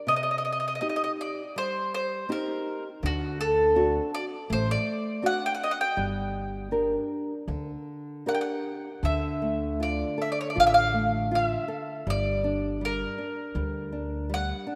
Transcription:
0.07 nylon-string guitar C3, mandolin D#5
0.16 mandolin D#5
0.23 mandolin D#5
0.31 mandolin D#5
0.38 mandolin D#5
0.45 mandolin D#5
0.53 mandolin D#5
0.60 mandolin D#5
0.68 mandolin D#5
0.75 mandolin D#5
0.81 nylon-string guitar C4 D#4 G4, mandolin D#5
0.89 mandolin D#5
0.96 mandolin D#5
1.04 mandolin D#5
1.21 mandolin D5
1.56 nylon-string guitar G3, mandolin C5
1.94 mandolin C5
2.29 nylon-string guitar C4 D#4 G4, mandolin A#4
3.03 upright bass D2, nylon-string guitar D3, mandolin F#4
3.41 mandolin A4
3.75 nylon-string guitar C4 D4 F#4
4.15 mandolin D5
4.50 upright bass A1, nylon-string guitar A3, mandolin C5
4.71 mandolin D5
5.22 nylon-string guitar C4 D4 F#4, mandolin F#5
5.46 mandolin G5
5.55 mandolin F#5
5.63 mandolin D#5
5.71 mandolin F#5
5.81 mandolin G5
5.97 upright bass G1, nylon-string guitar G3
6.71 nylon-string guitar D4 G4 A#4
7.48 upright bass D2, nylon-string guitar D3
8.26 nylon-string guitar D4 G4 A#4, mandolin F#5
8.35 mandolin G5
8.41 mandolin F#5
9.03 upright bass D2, nylon-string guitar D3, mandolin E5
9.42 nylon-string guitar A3
9.80 nylon-string guitar F4, mandolin D5
10.18 nylon-string guitar A4, mandolin E5
10.32 mandolin D5
10.41 mandolin C#5
10.50 mandolin D5
10.55 upright bass A1, nylon-string guitar F4
10.60 mandolin F5
10.67 mandolin E5
10.74 mandolin F5
10.94 nylon-string guitar A3
11.31 nylon-string guitar F4, mandolin E5
11.68 nylon-string guitar A4
12.07 upright bass G1, nylon-string guitar G3, mandolin D5
12.44 nylon-string guitar D4
12.81 nylon-string guitar G3, mandolin A#4
13.18 nylon-string guitar D4
13.55 upright bass D2, nylon-string guitar G3
13.92 nylon-string guitar D4
14.29 nylon-string guitar G3
14.34 mandolin F#5
14.67 nylon-string guitar D4

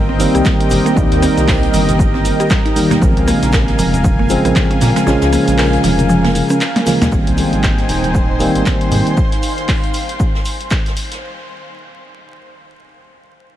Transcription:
Already playing: analog synth bass G1, tine electric piano D#3 G3 A#3 C4, analog synth pad C4 A#4 D#5 G5, ambient pad C4 G4 D#5 F5 A#5
0.09 synth arpeggio sound C4
0.19 tine electric piano D#3 G3 A#3 C4, open hi-hat, high conga, cabasa, shaker
0.35 analog synth bass C2, synth arpeggio sound G4, cross-stick, closed hi-hat, cabasa
0.45 synth arpeggio sound G3, kick, snare, clap, cabasa, shaker
0.60 synth arpeggio sound D#4, closed hi-hat
0.70 analog synth bass G1, open hi-hat, high bongo, low conga, cabasa, shaker
0.86 synth arpeggio sound A#3, closed hi-hat, cabasa
0.96 analog synth bass C2, tine electric piano D#3 G3 A#3 D#4, synth arpeggio sound G3, kick, cabasa, shaker
1.12 analog synth bass D#2, snare, closed hi-hat
1.22 synth arpeggio sound C4, cross-stick, open hi-hat, cabasa, shaker
1.37 analog synth bass C2, snare, closed hi-hat, cabasa
1.48 synth arpeggio sound C5, kick, snare, clap, open hi-hat, cabasa
1.63 closed hi-hat
1.73 analog synth bass G1, synth arpeggio sound G3, open hi-hat, high conga, cabasa, shaker
1.88 snare, closed hi-hat, high conga, low conga, cabasa
1.99 synth arpeggio sound G3, kick, cabasa, shaker
2.14 synth arpeggio sound C4, snare, high bongo
2.25 open hi-hat, high bongo, cabasa, shaker
2.40 synth arpeggio sound G4, cross-stick, closed hi-hat, cabasa
2.50 synth arpeggio sound G3, kick, snare, clap, high bongo, cabasa, shaker
2.65 synth arpeggio sound D#4, snare, closed hi-hat
2.76 tine electric piano D#3 G3 A#3 D#4, open hi-hat, high conga, cabasa, shaker
2.90 synth arpeggio sound A#3, snare, closed hi-hat, low conga, cabasa
3.01 analog synth bass A#1, tine electric piano C#3 F3 G#3 C4, synth arpeggio sound F3, analog synth pad F5 G#5, kick, cabasa, shaker
3.17 analog synth bass C#2, closed hi-hat
3.27 synth arpeggio sound A#3, cross-stick, open hi-hat, cabasa, shaker
3.42 analog synth bass A#1, snare, closed hi-hat, cabasa
3.52 synth arpeggio sound A#4, kick, snare, clap, cabasa, shaker
3.68 snare, closed hi-hat
3.78 analog synth bass F1, synth arpeggio sound F3, ambient pad F5, open hi-hat, cabasa, shaker
3.93 closed hi-hat, high conga, low conga, cabasa
4.04 synth arpeggio sound F3, kick, cabasa, shaker
4.19 synth arpeggio sound A#3
4.29 tine electric piano C#3 F3 G#3 C4, open hi-hat, high conga, cabasa, shaker
4.45 analog synth bass A#1, synth arpeggio sound F4, cross-stick, closed hi-hat, cabasa
4.55 synth arpeggio sound F3, kick, snare, clap, cabasa, shaker
4.71 synth arpeggio sound C#4, closed hi-hat
4.81 analog synth bass A#2, snare, open hi-hat, high bongo, low conga, cabasa, shaker
4.96 synth arpeggio sound G#3, snare, closed hi-hat, cabasa, shaker
5.06 analog synth bass A#1, tine electric piano C#3 F3 G#3 C#4, synth arpeggio sound F3, snare, cabasa, shaker
5.21 analog synth bass C#2, snare, closed hi-hat, high bongo, shaker
5.32 synth arpeggio sound A#3, cross-stick, open hi-hat, cabasa, shaker
5.48 analog synth bass A#1, snare, closed hi-hat, cabasa
5.58 synth arpeggio sound A#4, snare, clap, open hi-hat, cabasa
5.73 closed hi-hat
5.83 analog synth bass F1, synth arpeggio sound F3, snare, open hi-hat, high conga, cabasa
5.98 closed hi-hat, high conga, low conga, cabasa
6.09 synth arpeggio sound F3, cabasa, shaker
6.24 synth arpeggio sound A#3, snare, closed hi-hat, open hi-hat, high bongo
6.35 closed hi-hat, open hi-hat, high bongo, cabasa
6.49 synth arpeggio sound C#4, cross-stick, closed hi-hat, cabasa, shaker
6.61 snare, clap, high bongo, cabasa, shaker
6.76 synth arpeggio sound A#3, snare, closed hi-hat
6.86 tine electric piano C#3 F3 G#3 A#3, snare, open hi-hat, high conga, cabasa, shaker
7.01 analog synth bass D#2, synth arpeggio sound A#3, snare, closed hi-hat, low conga, cabasa, shaker
7.11 analog synth bass G#1, tine electric piano D#3 G3 C4, ambient pad D#4, analog synth pad D#4 C5 G5 G#5, string machine C5 C6, kick, shaker
7.27 analog synth bass C2, closed hi-hat
7.38 open hi-hat, shaker
7.53 analog synth bass G#1, snare, closed hi-hat
7.63 kick, snare, clap, shaker
7.78 snare, closed hi-hat
7.89 analog synth bass D#1, open hi-hat, shaker
8.04 closed hi-hat, high conga, low conga
8.15 kick, shaker
8.38 tine electric piano D#3 G3 A#3 C4, ambient pad C6, open hi-hat, high conga, shaker
8.55 analog synth bass G#1, closed hi-hat
8.65 kick, snare, clap, shaker
8.81 closed hi-hat
8.91 analog synth bass G#2, open hi-hat, high bongo, low conga, shaker
9.07 closed hi-hat
9.17 analog synth pad F5, kick, shaker
9.32 snare, closed hi-hat
9.43 open hi-hat, shaker
9.58 snare, closed hi-hat
9.68 kick, snare, clap, open hi-hat
9.84 closed hi-hat
9.94 open hi-hat, shaker
10.09 closed hi-hat
10.20 kick, shaker
10.35 snare
10.45 open hi-hat, shaker
10.61 closed hi-hat
10.70 kick, snare, clap, shaker
10.86 snare, closed hi-hat
10.97 open hi-hat, shaker
11.12 snare, closed hi-hat

